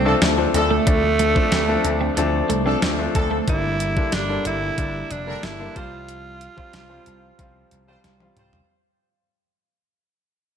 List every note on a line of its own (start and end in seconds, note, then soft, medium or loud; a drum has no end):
0.00 0.12 C2 medium
0.00 0.05 F3 medium
0.00 0.05 A3 medium
0.00 0.05 C4 medium
0.00 0.22 C4 medium
0.00 0.06 D4 medium
0.05 0.25 F3 medium
0.05 0.16 F3 medium
0.05 0.25 A3 medium
0.05 0.25 C4 medium
0.05 0.19 C4 medium
0.05 0.16 D4 medium
0.05 0.26 D4 medium
0.05 0.16 A4 medium
0.22 0.45 D2 medium
0.22 0.35 D4 medium
0.22 snare loud
0.22 closed hi-hat medium
0.37 0.68 F3 medium
0.37 0.68 A3 medium
0.37 0.68 C4 medium
0.37 0.68 D4 medium
0.37 muted clean electric guitar stroke soft
0.54 0.78 D2 medium
0.54 0.75 F3 medium
0.54 2.47 A3 loud
0.54 0.75 D4 medium
0.54 0.75 A4 medium
0.54 closed hi-hat medium
0.71 0.84 A3 medium
0.87 1.34 D2 medium
0.87 1.17 F3 medium
0.87 1.17 A3 medium
0.87 1.17 C4 medium
0.87 1.00 D4 medium
0.87 1.17 D4 medium
0.87 kick loud
0.87 closed hi-hat medium
1.03 muted clean electric guitar stroke soft
1.19 1.33 A3 medium
1.19 closed hi-hat medium
1.35 1.55 F3 medium
1.35 1.56 A3 medium
1.35 1.56 C4 medium
1.35 1.56 D4 medium
1.35 kick medium
1.52 1.76 D2 loud
1.52 1.65 C4 medium
1.52 snare medium
1.52 closed hi-hat medium
1.68 1.98 F3 medium
1.68 1.98 A3 medium
1.68 1.99 C4 medium
1.68 1.99 D4 medium
1.84 2.08 D2 medium
1.84 muted clean electric guitar stroke soft
1.84 closed hi-hat medium
2.01 2.14 C4 medium
2.17 2.41 D2 medium
2.17 2.47 F3 medium
2.17 2.48 A3 medium
2.17 2.48 C4 medium
2.17 2.48 D4 medium
2.17 muted clean electric guitar stroke soft
2.17 closed hi-hat medium
2.49 2.73 C2 medium
2.49 2.63 A3 medium
2.49 closed hi-hat medium
2.66 2.86 F3 medium
2.66 2.77 F3 medium
2.66 2.86 A3 medium
2.66 2.79 C4 medium
2.66 2.86 C4 medium
2.66 2.77 D4 medium
2.66 2.87 D4 medium
2.66 2.77 A4 loud
2.82 3.06 D2 loud
2.82 2.96 D4 medium
2.82 snare loud
2.82 closed hi-hat medium
2.99 3.29 F3 medium
2.99 3.29 A3 medium
2.99 3.29 C4 medium
2.99 3.29 D4 medium
2.99 muted clean electric guitar stroke soft
3.15 3.39 D2 medium
3.15 3.36 F3 medium
3.15 3.36 D4 medium
3.15 3.36 A4 medium
3.15 kick medium
3.15 closed hi-hat medium
3.31 3.44 A3 medium
3.47 3.95 G1 medium
3.47 3.78 D3 medium
3.47 3.78 G3 medium
3.47 3.78 A#3 medium
3.47 3.78 D4 medium
3.47 4.16 E4 medium
3.47 kick loud
3.47 closed hi-hat medium
3.80 closed hi-hat medium
3.97 4.17 D3 medium
3.97 4.17 G3 medium
3.97 4.17 A#3 medium
3.97 4.17 D4 medium
3.97 kick medium
4.12 4.37 G1 medium
4.12 4.46 D4 medium
4.12 snare medium
4.12 closed hi-hat medium
4.29 4.59 D3 medium
4.29 4.59 G3 medium
4.29 4.59 A#3 medium
4.29 4.60 D4 medium
4.45 4.69 G1 medium
4.45 5.13 E4 loud
4.45 closed hi-hat medium
4.78 5.02 G1 medium
4.78 5.08 D3 medium
4.78 5.08 G3 medium
4.78 5.08 A#3 medium
4.78 5.09 D4 medium
4.78 kick medium
4.78 closed hi-hat medium
5.11 5.34 F1 medium
5.11 5.46 D4 medium
5.11 closed hi-hat medium
5.27 5.47 D3 medium
5.27 5.47 G3 medium
5.27 5.38 G3 medium
5.27 5.47 A#3 medium
5.27 5.38 D4 medium
5.27 5.47 D4 medium
5.27 5.38 A#4 medium
5.43 5.67 G1 medium
5.43 5.78 E4 loud
5.43 snare loud
5.43 closed hi-hat medium
5.59 5.76 D3 medium
5.59 5.74 G3 medium
5.59 5.76 A#3 medium
5.59 5.76 D4 medium
5.75 6.46 C2 medium
5.75 6.41 F3 medium
5.75 6.41 G3 medium
5.75 5.97 G3 medium
5.75 6.41 C4 medium
5.75 5.97 F4 medium
5.75 6.41 F4 medium
5.75 8.05 F4 loud
5.75 5.97 C5 medium
5.75 kick medium
5.75 closed hi-hat medium
6.09 closed hi-hat medium
6.41 closed hi-hat medium
6.56 6.77 F3 medium
6.56 6.77 G3 medium
6.56 6.77 C4 medium
6.56 6.78 F4 medium
6.56 kick medium
6.73 6.97 C2 medium
6.73 snare medium
6.73 closed hi-hat medium
6.89 7.20 F3 medium
6.89 7.20 G3 medium
6.89 7.20 C4 medium
6.89 7.20 F4 medium
7.06 7.30 C2 medium
7.06 closed hi-hat medium
7.38 7.62 C2 medium
7.38 7.69 F3 medium
7.38 7.69 G3 medium
7.38 7.69 C4 medium
7.38 7.69 F4 medium
7.38 kick medium
7.38 closed hi-hat medium
7.71 7.95 C2 medium
7.71 closed hi-hat medium
7.88 8.08 F3 medium
7.88 8.08 G3 medium
7.88 7.99 G3 medium
7.88 8.08 C4 medium
7.88 7.99 F4 medium
7.88 8.08 F4 medium
7.88 7.99 C5 medium
8.04 8.28 C2 medium
8.04 snare soft
8.04 closed hi-hat medium
8.20 8.50 F3 medium
8.20 8.51 G3 medium
8.20 8.51 C4 medium
8.20 8.51 F4 medium
8.20 high tom medium
8.37 8.60 C2 medium
8.37 8.58 G3 medium
8.37 8.58 F4 medium
8.37 8.58 C5 medium
8.37 closed hi-hat medium
8.37 mid tom medium
8.53 floor tom medium